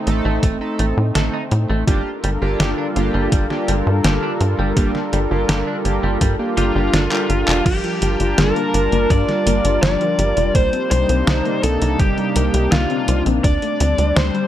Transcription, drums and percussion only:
0.07 closed hi-hat medium
0.43 kick loud
0.43 closed hi-hat medium
0.79 closed hi-hat medium
1.15 snare loud
1.15 closed hi-hat medium
1.51 closed hi-hat medium
1.88 kick loud
1.88 closed hi-hat medium
2.24 closed hi-hat medium
2.60 snare loud
2.60 closed hi-hat medium
2.96 closed hi-hat medium
3.32 kick loud
3.32 closed hi-hat medium
3.50 snare soft
3.68 closed hi-hat medium
4.04 snare loud
4.04 closed hi-hat medium
4.41 closed hi-hat medium
4.77 kick loud
4.77 closed hi-hat medium
4.95 snare soft
5.13 closed hi-hat medium
5.49 snare loud
5.49 closed hi-hat medium
5.85 closed hi-hat medium
6.21 kick loud
6.21 closed hi-hat medium
6.57 closed hi-hat medium
6.94 snare loud
6.94 closed hi-hat medium
7.12 clap medium
7.30 closed hi-hat medium
7.48 clap loud
7.66 kick loud
7.66 closed hi-hat medium
7.66 crash loud
7.84 closed hi-hat soft
8.02 closed hi-hat medium
8.20 closed hi-hat medium
8.38 snare loud
8.38 closed hi-hat medium
8.56 closed hi-hat soft
8.74 closed hi-hat medium
8.92 closed hi-hat medium
9.10 kick loud
9.10 closed hi-hat medium
9.29 snare soft
9.29 closed hi-hat soft
9.47 closed hi-hat medium
9.65 closed hi-hat medium
9.83 snare loud
9.83 closed hi-hat medium
10.01 closed hi-hat soft
10.19 closed hi-hat medium
10.37 closed hi-hat medium
10.55 kick loud
10.55 closed hi-hat medium
10.73 closed hi-hat soft
10.91 closed hi-hat medium
11.09 closed hi-hat medium
11.27 snare loud
11.27 closed hi-hat medium
11.45 closed hi-hat soft
11.63 closed hi-hat loud
11.82 closed hi-hat medium
11.99 kick loud
11.99 closed hi-hat medium
12.18 closed hi-hat soft
12.36 closed hi-hat medium
12.54 closed hi-hat medium
12.72 snare loud
12.72 closed hi-hat medium
12.90 closed hi-hat soft
13.08 closed hi-hat medium
13.26 closed hi-hat medium
13.44 kick loud
13.44 closed hi-hat medium
13.62 closed hi-hat soft
13.80 closed hi-hat loud
13.98 closed hi-hat medium
14.16 snare loud
14.16 closed hi-hat medium
14.35 closed hi-hat soft

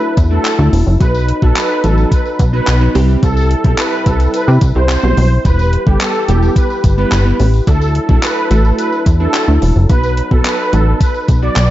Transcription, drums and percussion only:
0.17 kick loud
0.17 closed hi-hat medium
0.17 tambourine medium
0.45 clap loud
0.45 closed hi-hat loud
0.45 tambourine medium
0.73 open hi-hat medium
0.73 tambourine medium
0.87 tambourine soft
1.00 kick loud
1.00 closed hi-hat medium
1.00 tambourine medium
1.14 tambourine medium
1.29 closed hi-hat medium
1.42 kick loud
1.56 clap loud
1.56 closed hi-hat loud
1.56 tambourine medium
1.70 tambourine soft
1.84 closed hi-hat medium
1.84 tambourine medium
1.98 tambourine soft
2.12 kick medium
2.12 closed hi-hat loud
2.12 tambourine soft
2.25 tambourine soft
2.39 kick loud
2.39 closed hi-hat medium
2.39 tambourine medium
2.67 clap loud
2.67 closed hi-hat medium
2.67 tambourine medium
2.95 open hi-hat medium
2.95 tambourine soft
3.09 tambourine soft
3.23 kick loud
3.23 closed hi-hat medium
3.23 tambourine medium
3.37 tambourine medium
3.51 closed hi-hat medium
3.64 kick medium
3.64 closed hi-hat medium
3.78 clap loud
3.78 closed hi-hat loud
3.78 tambourine medium
3.93 tambourine soft
4.06 kick loud
4.06 closed hi-hat medium
4.06 tambourine soft
4.20 closed hi-hat medium
4.20 tambourine soft
4.34 closed hi-hat medium
4.34 tambourine medium
4.48 tambourine soft
4.61 kick loud
4.61 closed hi-hat medium
4.61 tambourine medium
4.89 clap loud
4.89 closed hi-hat loud
4.89 tambourine medium
5.17 open hi-hat medium
5.17 tambourine medium
5.45 kick loud
5.45 closed hi-hat medium
5.45 tambourine medium
5.59 tambourine medium
5.73 closed hi-hat medium
5.87 kick loud
6.01 clap loud
6.01 closed hi-hat loud
6.01 tambourine medium
6.15 tambourine soft
6.28 closed hi-hat medium
6.28 tambourine soft
6.42 tambourine soft
6.56 kick loud
6.56 closed hi-hat loud
6.56 tambourine soft
6.70 tambourine soft
6.84 kick medium
6.84 closed hi-hat medium
6.84 tambourine medium
7.12 clap loud
7.12 closed hi-hat loud
7.12 tambourine medium
7.39 open hi-hat medium
7.39 tambourine medium
7.53 tambourine soft
7.67 kick loud
7.67 closed hi-hat medium
7.67 tambourine medium
7.81 tambourine medium
7.95 closed hi-hat medium
8.09 kick loud
8.23 clap loud
8.23 closed hi-hat loud
8.23 tambourine medium
8.51 closed hi-hat medium
8.51 tambourine soft
8.65 tambourine soft
8.79 closed hi-hat medium
8.79 tambourine medium
8.92 tambourine soft
9.06 kick loud
9.06 closed hi-hat medium
9.06 tambourine medium
9.34 clap loud
9.34 closed hi-hat loud
9.34 tambourine medium
9.62 open hi-hat medium
9.62 tambourine medium
9.76 tambourine soft
9.89 kick loud
9.89 closed hi-hat medium
9.89 tambourine medium
10.03 tambourine medium
10.17 closed hi-hat medium
10.31 kick loud
10.45 clap loud
10.45 closed hi-hat loud
10.45 tambourine medium
10.59 tambourine soft
10.73 closed hi-hat medium
10.73 tambourine soft
11.01 kick loud
11.01 closed hi-hat medium
11.01 tambourine medium
11.14 tambourine soft
11.28 kick loud
11.28 closed hi-hat medium
11.28 tambourine medium
11.56 clap loud
11.56 closed hi-hat loud
11.56 tambourine medium

